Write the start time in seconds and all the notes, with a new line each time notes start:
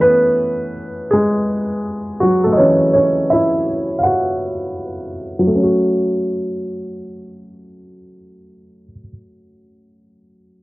Already playing: E3 A3 C#4
0.01 B3 B4
1.11 G#3 G#4
2.20 F#3 F#4
2.44 A3 A4
2.52 D#5
2.57 E3 A3 C#4 C#5
2.93 C#4 C#5
3.30 E4 E5
3.99 F5
4.03 F#4 F#5
5.39 F#3
5.47 A3
5.55 C#4
5.63 F#4